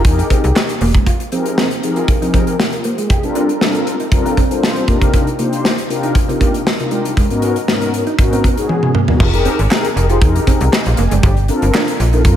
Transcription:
0.05 F2 G4 G#4 A#4, muted clean electric guitar stroke, kick, closed hi-hat
0.19 D#4, closed hi-hat
0.30 C4, kick, closed hi-hat
0.44 C2, closed hi-hat
0.56 muted clean electric guitar stroke, snare, clap
0.69 closed hi-hat
0.81 E1 A#3, open hi-hat
0.95 G#3, kick
1.06 F4, kick, closed hi-hat
1.20 muted clean electric guitar stroke, closed hi-hat
1.32 F3 C4 D#4 G4 G#4 A#4, closed hi-hat
1.46 closed hi-hat
1.58 C4, snare
1.71 closed hi-hat
1.83 F3 C4 D#4 G4 G#4 A#4, muted clean electric guitar stroke, closed hi-hat
1.96 F4, closed hi-hat
2.08 muted clean electric guitar stroke, kick, closed hi-hat
2.21 F3 C4 D#4 G4 G#4 A#4, closed hi-hat
2.34 C4, kick, closed hi-hat
2.47 closed hi-hat
2.59 muted clean electric guitar stroke, snare
2.72 F4 A#4, closed hi-hat
2.84 A#3 G4 C5, closed hi-hat
2.98 G#3 D#4 G#4, closed hi-hat
3.10 G4, kick, closed hi-hat
3.23 G3 C4 D4 F4 A4 A#4, muted clean electric guitar stroke, closed hi-hat
3.35 D4, closed hi-hat
3.49 closed hi-hat
3.61 G3 C4 D4 F4 A4 A#4, snare
3.75 closed hi-hat
3.86 muted clean electric guitar stroke, closed hi-hat
4.00 D#4, closed hi-hat
4.11 G3 C4 D4 F4 A4 A#4, muted clean electric guitar stroke, kick, closed hi-hat
4.25 D4, closed hi-hat
4.37 C4, kick, closed hi-hat
4.50 G3 C4 D4 F4 A4 C5, closed hi-hat
4.63 muted clean electric guitar stroke, snare
4.76 closed hi-hat
4.88 C3 A#3 D4 D#4 F4 G4 A#4, kick, closed hi-hat
5.01 G3, kick, closed hi-hat
5.14 C4, kick, closed hi-hat
5.27 muted clean electric guitar stroke, closed hi-hat
5.39 C3 A#3 D4 D#4 F4 G4 C5, closed hi-hat
5.53 closed hi-hat
5.64 A#3, snare
5.78 closed hi-hat
5.89 C3 D4 D#4 F4 G4 A#4, muted clean electric guitar stroke, closed hi-hat
6.03 D#4, closed hi-hat
6.15 muted clean electric guitar stroke, kick, closed hi-hat
6.28 C3 C4 D4 D#4 F4 G4 A#4, closed hi-hat
6.40 A#3, kick, closed hi-hat
6.54 closed hi-hat
6.66 muted clean electric guitar stroke, snare
6.80 C3 D4 D#4 F4 G4 A#4, closed hi-hat
6.91 G#3, closed hi-hat
7.05 G3, closed hi-hat
7.17 G#3, kick, closed hi-hat
7.30 G#2 B3 C#4 D#4 F#4 A#4, muted clean electric guitar stroke, closed hi-hat
7.42 B3, closed hi-hat
7.56 closed hi-hat
7.67 G#2 B3 C#4 D#4 F#4 A#4, snare
7.81 closed hi-hat
7.93 muted clean electric guitar stroke, closed hi-hat
8.07 D#4, closed hi-hat
8.18 G#2 B3 C#4 D#4 F#4 A#4, muted clean electric guitar stroke, kick, closed hi-hat
8.32 C4, closed hi-hat
8.44 B3, kick, closed hi-hat
8.57 G#2 B3 C#4 D#4 F#4 G#4, closed hi-hat
8.69 muted clean electric guitar stroke, high tom
8.83 mid tom
8.95 A#3, mid tom
9.08 G#2 F#3 B3 C#4 D#4 F#4 A#4, floor tom
9.19 F1 D#4 F4 G4 G#4 A#4, kick, crash
9.33 D#4 G4 G#4 A#4, muted clean electric guitar stroke, closed hi-hat
9.45 C4, closed hi-hat
9.59 G#1, closed hi-hat
9.70 C4 D#4 G4 G#4 A#4, snare, clap
9.85 closed hi-hat
9.96 F1 D#4 G4 G#4 A#4, muted clean electric guitar stroke, closed hi-hat
10.10 D#4 F4 G4 G#4 C5, closed hi-hat
10.21 F2 D#4 G4 G#4 A#4, muted clean electric guitar stroke, kick, closed hi-hat
10.35 D#4, closed hi-hat
10.47 C4, kick, closed hi-hat
10.61 C2, closed hi-hat
10.73 D#5, muted clean electric guitar stroke, snare, clap
10.86 A#1 C5 F5, closed hi-hat
10.97 F1 A#3 D#5 G#5, closed hi-hat
11.11 F#1 G#3 D5 G5, closed hi-hat
11.23 G1 G4, kick, closed hi-hat
11.37 muted clean electric guitar stroke, closed hi-hat
11.48 C4 D4 F4 A4 A#4, closed hi-hat
11.62 G1, closed hi-hat
11.74 D4, snare, clap
11.88 closed hi-hat
12.00 A#1, muted clean electric guitar stroke, closed hi-hat
12.13 C4 D#4 F4 A4 A#4, closed hi-hat
12.25 G2 C4 F4 A4 A#4, muted clean electric guitar stroke, kick, closed hi-hat

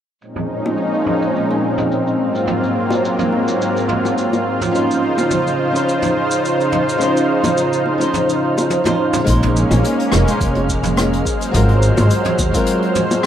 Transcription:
0.21 A#2 F3 G#3 C4 C#4 D#4 F6, shaker
0.36 mid tom, shaker
0.65 high bongo, shaker
0.77 shaker
0.94 shaker
1.06 mid tom
1.22 shaker
1.36 shaker
1.51 high bongo, shaker
1.78 mid tom, shaker
1.92 shaker
2.07 shaker
2.19 G#2 F#3 A#3 F4
2.35 shaker
2.47 mid tom, shaker
2.63 shaker
2.90 high bongo, shaker
3.05 shaker
3.19 mid tom, shaker
3.32 high bongo
3.48 shaker
3.61 shaker
3.77 shaker
3.89 mid tom
4.05 high bongo, shaker
4.18 shaker
4.33 high bongo, shaker
4.61 mid tom, shaker
4.71 C#3 F3 C#4 D#4 C5
4.75 C5, shaker
4.91 shaker
5.18 high bongo, shaker
5.30 mid tom, shaker
5.47 shaker
5.71 F3 C#4 D#4
5.76 C5, shaker
5.89 shaker
6.02 mid tom, high bongo, shaker
6.31 shaker
6.45 shaker
6.60 shaker
6.72 mid tom
6.89 shaker
6.98 F3 C#4 D#4, shaker
7.03 C5
7.17 shaker
7.44 mid tom, high bongo, shaker
7.57 shaker
7.73 shaker
7.86 high bongo
7.98 F3 C#4 D#4, shaker
8.03 C5
8.14 mid tom, shaker
8.29 shaker
8.58 high bongo, shaker
8.70 high tom, shaker
8.84 F3 C#4 D#4 C5, mid tom, high tom, high bongo, shaker
9.13 mid tom, shaker
9.24 A#1 G#3 A#3 C#4 D#4 F6, kick, closed hi-hat, shaker
9.29 C5
9.42 closed hi-hat, mid tom
9.57 shaker
9.71 A#1, closed hi-hat, high bongo, shaker
9.84 closed hi-hat, shaker
9.99 closed hi-hat
10.12 F1, cross-stick, mid tom, shaker
10.25 G#3 C#4 D#4, closed hi-hat, shaker
10.30 C5
10.40 F1, kick, closed hi-hat, shaker
10.55 closed hi-hat, high bongo
10.69 kick, shaker
10.83 closed hi-hat, mid tom, shaker
10.97 cross-stick, closed hi-hat, shaker
11.13 closed hi-hat
11.25 F#3 C5, kick, shaker
11.41 closed hi-hat, shaker
11.51 G#1 F#3 C4 F4, kick, closed hi-hat, mid tom, shaker
11.56 A#4
11.69 closed hi-hat
11.82 shaker
11.97 G#1, closed hi-hat, high bongo, shaker
12.10 closed hi-hat, shaker
12.24 closed hi-hat, mid tom
12.38 D#2, kick, high bongo, shaker
12.51 F#3 C4 F4, kick, closed hi-hat, shaker
12.56 A#4
12.66 closed hi-hat, shaker
12.82 closed hi-hat
12.95 mid tom, shaker
13.11 closed hi-hat, high bongo, shaker

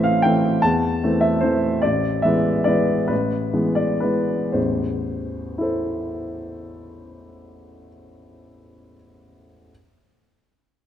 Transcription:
Already playing: A1 E3 A3 C4 E5
0.04 F5
0.22 E3 A3 C4 G5
0.62 E2 A5
1.03 E3 A3 C4
1.21 E5
1.41 E3 A3 C4 C5
1.82 A1 D5
2.22 E3 G#3 B3 E5
2.64 E3 G#3 B3 D5
3.08 A1 B4
3.53 E3 G#3 B3
3.75 D5
4.00 E3 G#3 B3 B4
4.52 A1 E2 C5
5.58 E4 A4
5.62 C5

